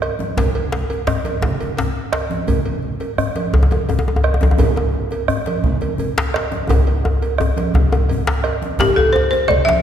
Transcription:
0.02 bombo rim medium
0.02 cowbell medium
0.02 djembe slap soft
0.02 high conga soft
0.19 bombo rim soft
0.19 djembe slap medium
0.19 high conga medium
0.19 djembe tone medium
0.37 bombo low medium
0.37 cowbell medium
0.37 djembe slap medium
0.37 high conga soft
0.37 low conga medium
0.37 djembe bass medium
0.55 cowbell medium
0.55 djembe slap soft
0.72 djembe slap medium
0.72 djembe slap soft
0.72 high conga soft
0.90 cowbell medium
0.90 djembe tone medium
1.07 bombo rim medium
1.07 djembe slap medium
1.07 djembe bass medium
1.25 cowbell soft
1.25 djembe slap medium
1.25 high conga medium
1.42 bombo rim soft
1.42 bombo low medium
1.42 djembe slap medium
1.42 low conga medium
1.60 cowbell soft
1.60 djembe tone medium
1.77 cowbell soft
1.77 djembe slap medium
1.77 djembe bass medium
1.96 djembe slap soft
2.13 bombo rim medium
2.13 cowbell soft
2.13 djembe slap medium
2.13 djembe slap soft
2.30 djembe slap medium
2.30 high conga medium
2.30 djembe tone medium
2.47 bombo low loud
2.47 cowbell medium
2.47 high conga soft
2.47 low conga medium
2.47 djembe bass medium
2.65 cowbell soft
2.65 djembe slap soft
2.82 djembe slap soft
2.82 high conga soft
3.00 cowbell soft
3.00 djembe tone medium
3.18 bombo rim loud
3.18 djembe bass medium
3.35 cowbell soft
3.35 djembe slap medium
3.35 high conga medium
3.53 bombo rim soft
3.53 bombo low loud
3.53 djembe tone loud
3.53 low conga medium
3.63 djembe tone medium
3.71 cowbell soft
3.71 djembe tone medium
3.89 cowbell soft
3.89 djembe tone medium
3.89 djembe bass medium
3.99 djembe tone loud
4.06 djembe slap soft
4.06 djembe tone medium
4.16 djembe tone medium
4.24 bombo rim loud
4.24 cowbell soft
4.24 djembe slap soft
4.34 djembe tone medium
4.41 djembe slap medium
4.41 djembe tone medium
4.41 high conga medium
4.43 djembe tone loud
4.51 djembe tone medium
4.58 bombo low loud
4.58 cowbell medium
4.58 high conga soft
4.58 djembe tone medium
4.58 djembe bass medium
4.58 low conga medium
4.76 cowbell soft
4.76 djembe slap soft
4.76 djembe tone medium
4.93 djembe slap soft
4.93 high conga soft
5.11 cowbell soft
5.11 djembe tone medium
5.28 bombo rim loud
5.28 djembe bass medium
5.46 cowbell soft
5.46 djembe slap medium
5.46 high conga medium
5.63 bombo rim soft
5.63 bombo low medium
5.63 low conga medium
5.81 cowbell soft
5.81 djembe tone medium
5.98 cowbell soft
5.98 djembe bass medium
6.16 djembe slap soft
6.16 djembe slap loud
6.34 bombo rim loud
6.34 cowbell soft
6.34 djembe slap soft
6.36 djembe slap medium
6.52 djembe slap medium
6.52 high conga medium
6.52 djembe tone medium
6.68 bombo rim soft
6.68 bombo low medium
6.68 cowbell medium
6.68 djembe tone loud
6.68 low conga medium
6.68 djembe bass medium
6.87 cowbell soft
6.87 djembe slap soft
7.04 bombo rim soft
7.04 djembe slap soft
7.04 djembe tone loud
7.22 cowbell medium
7.22 djembe tone medium
7.38 bombo rim loud
7.38 djembe tone medium
7.38 djembe bass medium
7.57 cowbell soft
7.57 djembe slap medium
7.57 high conga medium
7.74 bombo low medium
7.74 djembe slap soft
7.74 djembe tone loud
7.74 low conga medium
7.92 bombo rim soft
7.92 cowbell medium
7.92 djembe slap soft
7.92 high conga soft
7.92 djembe tone medium
8.09 bombo rim soft
8.09 cowbell soft
8.09 high conga soft
8.09 djembe bass medium
8.27 djembe slap loud
8.44 bombo rim medium
8.44 cowbell medium
8.44 djembe slap soft
8.44 high conga soft
8.62 djembe slap medium
8.62 high conga medium
8.62 djembe tone medium
8.78 8.97 G4 medium
8.78 bombo low medium
8.78 cowbell medium
8.78 djembe slap medium
8.78 djembe tone medium
8.78 low conga medium
8.78 djembe bass medium
8.96 9.13 A4 medium
8.96 cowbell soft
8.96 djembe slap soft
8.96 djembe tone medium
9.13 9.30 C5 medium
9.13 djembe slap soft
9.13 high conga soft
9.13 djembe tone medium
9.31 9.49 C5 medium
9.31 cowbell soft
9.31 djembe slap medium
9.31 high conga soft
9.31 djembe tone medium
9.48 9.67 D5 medium
9.48 bombo rim medium
9.48 djembe tone medium
9.48 low conga medium
9.65 9.82 E5 loud
9.65 bombo rim soft
9.65 djembe slap soft
9.65 djembe slap medium
9.65 high conga medium

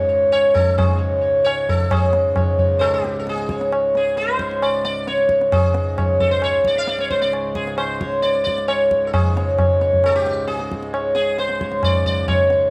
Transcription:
0.00 1.89 C#2 medium
0.00 1.88 G#2 medium
0.09 0.30 C#5 soft
0.32 0.56 C#5 loud
0.32 tabla na medium
0.54 0.77 A4 medium
0.54 tabla tin medium
0.54 tabla ge medium
0.78 0.99 G#4 medium
0.78 tabla na loud
0.78 tabla ge medium
0.98 1.20 C#5 soft
1.21 1.43 C#5 soft
1.44 1.68 C#5 loud
1.44 tabla na medium
1.69 1.92 A4 medium
1.69 tabla tin medium
1.69 tabla ge medium
1.90 9.13 C#2 medium
1.90 9.12 G#2 medium
1.90 2.56 G#4 medium
1.90 2.12 C#5 soft
1.90 tabla na medium
1.90 tabla ge medium
2.13 tabla te medium
2.36 2.58 C#5 soft
2.36 tabla na medium
2.36 tabla ge medium
2.58 2.79 C#5 soft
2.58 tabla ge medium
2.79 2.93 A4 medium
2.79 2.82 C5 medium
2.79 tabla na medium
2.94 3.19 G4 medium
3.04 tabla te medium
3.19 3.27 A4 medium
3.27 3.70 G#4 medium
3.27 tabla te medium
3.38 tabla te medium
3.49 3.71 C#5 soft
3.49 tabla ke medium
3.61 tabla te medium
3.72 3.94 C#5 soft
3.72 tabla na medium
3.95 4.17 G#4 medium
3.95 tabla te medium
4.17 4.62 C5 medium
4.17 tabla te medium
4.29 tabla te medium
4.39 4.62 C#5 soft
4.39 tabla ke medium
4.51 tabla te medium
4.62 4.83 D5 medium
4.62 tabla na medium
4.85 5.07 D5 medium
4.85 tabla te medium
5.07 5.29 C#5 medium
5.07 tabla te medium
5.18 tabla te medium
5.29 5.51 C#5 soft
5.29 tabla ke medium
5.41 tabla te medium
5.52 6.23 G#4 medium
5.52 tabla na loud
5.52 tabla ge medium
5.74 tabla te medium
5.98 6.19 C#5 soft
5.98 tabla na medium
5.98 tabla ge medium
6.20 6.31 A4 medium
6.20 tabla ge medium
6.31 6.43 C5 medium
6.42 6.67 C#5 medium
6.42 tabla na medium
6.65 6.78 D5 medium
6.65 tabla ke medium
6.75 6.89 F5 medium
6.75 tabla te medium
6.87 7.00 D5 medium
6.87 tabla te medium
6.99 7.10 C#5 medium
6.99 tabla te medium
7.11 7.21 C5 medium
7.11 tabla ke medium
7.22 7.32 D5 medium
7.22 tabla te medium
7.33 tabla na medium
7.55 7.77 G#4 medium
7.55 tabla ke medium
7.67 tabla te medium
7.78 8.22 C5 medium
7.78 tabla na medium
8.00 8.22 C#5 soft
8.00 tabla ke medium
8.22 8.43 D5 medium
8.22 tabla te medium
8.35 tabla te medium
8.44 8.68 D5 medium
8.44 tabla ke medium
8.58 tabla te medium
8.68 9.08 C#5 medium
8.68 tabla na medium
8.91 tabla ke medium
9.07 9.13 A4 medium
9.13 12.70 C#2 medium
9.13 12.70 G#2 medium
9.13 9.77 G#4 medium
9.13 tabla na medium
9.13 tabla ge medium
9.36 9.58 C#5 soft
9.36 tabla te medium
9.59 9.80 C#5 soft
9.59 tabla na medium
9.59 tabla ge medium
9.81 10.03 C#5 soft
9.81 tabla te medium
9.93 tabla ge soft
10.04 10.15 A4 loud
10.04 tabla na medium
10.16 10.47 G4 medium
10.26 tabla te medium
10.47 10.90 G#4 medium
10.47 tabla te medium
10.59 tabla te medium
10.72 tabla ke medium
10.83 tabla te medium
10.94 11.14 C#5 soft
10.94 tabla na medium
11.15 11.38 G#4 medium
11.15 tabla te medium
11.38 11.84 C5 medium
11.38 tabla te medium
11.49 tabla te medium
11.61 11.83 C#5 soft
11.61 tabla ke medium
11.72 tabla te medium
11.83 12.05 D5 medium
11.83 tabla na medium
11.83 tabla ge medium
12.06 12.27 D5 medium
12.06 tabla ge soft
12.28 12.51 C#5 loud
12.28 tabla na medium
12.28 tabla ge medium
12.50 12.70 C#5 soft
12.50 tabla te medium

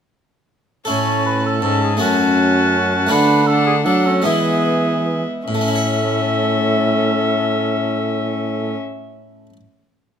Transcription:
0.85 1.65 A2 medium
0.85 1.59 A2 soft
0.85 1.96 C#4 soft
0.85 1.59 C#4 soft
0.85 1.96 E4 soft
0.85 1.95 A4 soft
0.85 1.23 C#5 medium
0.85 1.59 A5 medium
1.26 1.44 B4 medium
1.46 1.63 A4 medium
1.62 1.96 G#2 soft
1.62 2.02 G#2 medium
1.62 1.99 C#4 soft
1.62 1.82 A4 medium
1.62 1.99 A5 medium
1.83 2.00 G#4 medium
1.97 3.10 F#2 medium
1.97 3.07 F#2 soft
1.97 3.05 A3 soft
1.97 3.06 C#4 soft
1.97 3.13 C#4 medium
1.97 3.07 F#4 soft
1.97 3.11 F#4 medium
1.97 3.13 A5 medium
3.07 4.19 A3 soft
3.07 4.20 D4 soft
3.07 4.21 F#4 soft
3.07 3.48 B4 medium
3.11 3.82 D3 soft
3.11 3.87 D3 medium
3.11 3.47 D4 medium
3.11 3.48 F#5 medium
3.47 3.85 D4 medium
3.47 3.65 A4 medium
3.47 3.85 F#5 medium
3.66 3.75 G#4 medium
3.85 4.21 F#3 soft
3.85 4.24 F#3 medium
3.85 4.08 D4 medium
3.85 4.04 A4 medium
3.85 4.24 F#5 medium
4.05 4.28 C#4 soft
4.05 4.24 A4 medium
4.22 5.24 E3 medium
4.22 5.23 E3 soft
4.22 5.42 G#3 soft
4.22 5.42 B3 soft
4.22 5.43 E4 soft
4.22 5.24 G#4 medium
4.26 5.27 B3 soft
4.26 5.25 E5 soft
5.47 8.76 A2 medium
5.47 9.46 A2 soft
5.47 8.76 C#4 soft
5.47 8.76 A4 medium
5.47 8.77 E5 medium
5.54 9.50 A3 soft
5.61 9.53 C#4 soft
5.68 9.56 E4 soft
5.75 9.60 C#5 soft

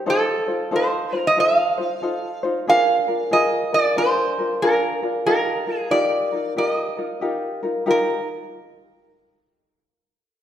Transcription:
0.06 0.47 D#4 medium
0.06 0.47 F4 medium
0.06 0.47 A4 medium
0.06 0.75 A4 medium
0.06 0.46 C5 medium
0.48 0.71 D#4 soft
0.48 0.71 F4 soft
0.48 0.71 C5 soft
0.71 1.13 D#4 medium
0.71 1.12 F4 medium
0.71 1.12 A4 medium
0.71 1.11 C5 medium
0.76 1.18 C5 medium
1.13 1.36 D#4 soft
1.13 1.37 F4 soft
1.13 1.37 C5 medium
1.18 1.28 A#4 medium
1.27 1.38 D#5 loud
1.37 1.78 D#4 medium
1.37 1.78 F4 medium
1.37 1.78 A4 medium
1.37 1.76 C5 medium
1.37 2.44 F5 medium
1.78 2.01 D#4 soft
1.78 2.02 F4 soft
1.78 2.02 C5 medium
2.02 2.43 D#4 medium
2.02 2.43 F4 medium
2.02 2.43 A4 medium
2.02 2.42 C5 medium
2.43 2.68 D#4 medium
2.43 2.68 F4 medium
2.43 2.67 C5 medium
2.68 3.08 D4 medium
2.68 3.08 F4 medium
2.68 3.08 G#4 medium
2.68 3.07 A#4 loud
2.68 3.33 F5 loud
3.08 3.32 D4 soft
3.08 3.31 F4 soft
3.08 3.32 A#4 soft
3.31 3.72 F4 medium
3.31 3.72 G#4 medium
3.31 3.71 A#4 medium
3.31 3.74 D#5 loud
3.73 3.96 D4 soft
3.73 3.97 F4 soft
3.73 3.97 A#4 medium
3.73 3.98 D5 loud
3.97 4.38 D4 medium
3.97 4.38 F4 medium
3.97 4.38 G#4 medium
3.97 4.37 A#4 medium
3.97 4.64 C5 medium
4.39 4.62 D4 soft
4.39 4.62 F4 soft
4.39 4.62 A#4 soft
4.62 5.03 D4 medium
4.62 5.02 F4 medium
4.62 5.03 G#4 medium
4.62 5.11 A#4 medium
4.62 5.01 A#4 medium
5.02 5.27 D4 soft
5.02 5.26 F4 soft
5.02 5.26 A#4 medium
5.26 5.68 D#4 medium
5.26 5.66 F4 medium
5.26 5.67 G4 medium
5.26 5.77 A#4 medium
5.26 5.66 A#4 medium
5.67 5.90 D#4 soft
5.67 5.91 F4 soft
5.67 5.90 A#4 soft
5.77 5.94 G#4 medium
5.91 6.32 D#4 medium
5.91 6.32 F4 medium
5.91 6.32 G4 medium
5.91 6.31 A#4 medium
5.91 6.53 D5 medium
6.32 6.56 D#4 soft
6.32 6.56 F4 soft
6.32 6.56 A#4 medium
6.57 6.98 D#4 medium
6.57 6.97 F4 medium
6.57 6.96 G4 medium
6.57 6.96 A#4 medium
6.57 6.69 D5 medium
6.69 7.59 D#5 medium
6.97 7.21 D#4 soft
6.97 7.21 F4 soft
6.97 7.21 A#4 soft
7.21 7.63 D#4 medium
7.21 7.63 F4 medium
7.21 7.62 G4 medium
7.21 7.62 A#4 medium
7.63 7.85 D#4 soft
7.63 7.86 F4 medium
7.63 7.85 A#4 medium
7.86 8.19 D#4 medium
7.86 8.20 F4 medium
7.86 8.19 G4 medium
7.86 8.20 A#4 medium
7.91 8.27 A#4 medium

